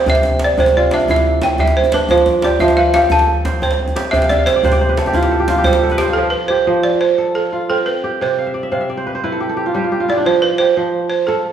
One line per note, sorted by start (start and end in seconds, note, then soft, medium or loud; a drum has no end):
0.00 0.13 F3 medium
0.00 1.37 C4 medium
0.00 1.33 G4 medium
0.00 0.38 A4 medium
0.00 0.13 B4 medium
0.06 0.57 C3 medium
0.06 0.44 E5 medium
0.06 djembe bass medium
0.15 djembe slap medium
0.23 djembe tone medium
0.32 djembe slap soft
0.39 djembe slap medium
0.44 0.61 D5 medium
0.58 2.16 C3 medium
0.58 0.77 C5 medium
0.58 djembe bass medium
0.66 djembe slap medium
0.66 djembe tone medium
0.77 2.28 F4 medium
0.77 0.94 D5 medium
0.91 1.93 D4 medium
0.91 1.10 E5 medium
0.91 djembe slap medium
1.00 djembe tone medium
1.08 2.17 E4 medium
1.08 1.26 E5 medium
1.08 djembe bass medium
1.16 djembe slap medium
1.25 djembe slap soft
1.42 1.59 G5 medium
1.42 djembe slap medium
1.42 djembe tone medium
1.58 2.16 G3 medium
1.58 1.77 E5 medium
1.58 djembe slap soft
1.58 djembe bass medium
1.68 djembe slap medium
1.76 1.94 C5 medium
1.76 djembe slap soft
1.84 djembe slap soft
1.84 djembe tone medium
1.92 3.62 D4 medium
1.92 2.10 B4 medium
1.92 djembe slap medium
2.09 2.60 F3 medium
2.09 2.45 C5 medium
2.09 djembe bass medium
2.18 djembe slap soft
2.26 djembe tone medium
2.34 djembe slap soft
2.42 2.95 G4 medium
2.42 2.60 D5 medium
2.42 djembe slap medium
2.59 4.18 F3 medium
2.59 2.78 E5 medium
2.59 djembe bass medium
2.68 djembe slap medium
2.68 djembe tone medium
2.77 3.51 B4 medium
2.77 2.93 F5 medium
2.94 3.95 G4 medium
2.94 3.10 F5 loud
2.94 djembe slap medium
3.02 djembe tone medium
3.10 4.44 A4 medium
3.10 3.27 A5 medium
3.10 djembe bass medium
3.19 djembe slap medium
3.28 djembe slap soft
3.45 4.64 C5 medium
3.45 djembe slap medium
3.45 djembe tone medium
3.62 4.95 C4 medium
3.62 4.10 C5 medium
3.62 djembe slap soft
3.62 djembe bass medium
3.71 djembe slap medium
3.79 djembe slap soft
3.88 djembe slap soft
3.88 djembe tone medium
3.96 5.07 G4 medium
3.96 djembe slap medium
4.11 4.63 C3 medium
4.11 4.30 E5 loud
4.11 5.06 G5 medium
4.11 djembe bass medium
4.22 4.38 F5 medium
4.22 djembe slap medium
4.29 4.47 D5 medium
4.29 4.47 E5 medium
4.29 djembe tone medium
4.39 5.20 F5 medium
4.46 4.78 C5 medium
4.46 5.21 E5 medium
4.46 djembe slap medium
4.56 4.72 D5 medium
4.63 6.21 C3 medium
4.63 4.81 C5 medium
4.63 djembe bass medium
4.72 5.83 D5 medium
4.72 djembe slap medium
4.72 djembe tone medium
4.81 5.97 C5 medium
4.81 djembe slap soft
4.89 5.91 B4 medium
4.89 djembe slap soft
4.97 5.31 A4 medium
4.97 djembe slap medium
5.06 5.22 G4 medium
5.06 djembe tone medium
5.13 5.55 E4 medium
5.13 5.49 F4 medium
5.13 djembe bass medium
5.23 5.39 G4 medium
5.23 djembe slap medium
5.31 5.66 A4 medium
5.40 5.58 G4 medium
5.48 6.09 F4 medium
5.48 djembe slap medium
5.48 djembe tone medium
5.56 5.74 G4 medium
5.56 djembe slap soft
5.64 6.21 G3 medium
5.64 5.83 A4 medium
5.64 5.97 C5 medium
5.64 djembe bass medium
5.73 6.50 G4 medium
5.73 djembe slap medium
5.83 7.15 A4 medium
5.90 7.14 B4 medium
5.90 djembe slap soft
5.90 djembe tone medium
5.98 6.16 G4 medium
5.98 7.19 C5 medium
5.98 djembe slap medium
6.10 7.52 F4 medium
6.10 6.32 A4 medium
6.17 6.66 F3 medium
6.30 6.48 B4 medium
6.48 7.91 G4 medium
6.48 6.84 C5 medium
6.67 8.26 F3 medium
6.83 7.02 D5 medium
7.01 7.33 C5 medium
7.18 8.50 A4 medium
7.35 7.68 A4 medium
7.53 8.52 F4 medium
7.70 9.13 C4 medium
7.70 7.86 A4 medium
7.86 8.22 B4 medium
8.04 9.40 G4 medium
8.21 8.71 C3 medium
8.21 8.86 C5 medium
8.39 8.69 F5 medium
8.46 8.63 E5 medium
8.54 8.89 D5 medium
8.63 8.80 E5 medium
8.72 10.31 C3 medium
8.72 9.30 F5 medium
8.81 9.72 E5 medium
8.90 10.00 D5 medium
8.97 9.14 C5 medium
9.07 9.23 B4 medium
9.15 10.34 C5 medium
9.24 9.72 E4 medium
9.24 10.46 B4 medium
9.32 9.49 A4 medium
9.40 9.56 G4 medium
9.49 10.81 A4 medium
9.57 9.75 G4 medium
9.66 9.84 F4 medium
9.74 10.31 G3 medium
9.74 9.91 G4 medium
9.84 10.00 F4 medium
9.92 10.59 G4 medium
10.00 11.52 F4 medium
10.09 10.32 E4 medium
10.09 10.27 D5 medium
10.17 11.52 D4 medium
10.26 10.76 F3 medium
10.26 10.42 C5 medium
10.42 10.60 B4 medium
10.58 11.52 G4 medium
10.58 11.08 C5 medium
10.77 11.52 F3 medium
11.10 11.26 C5 medium
11.27 11.52 A4 medium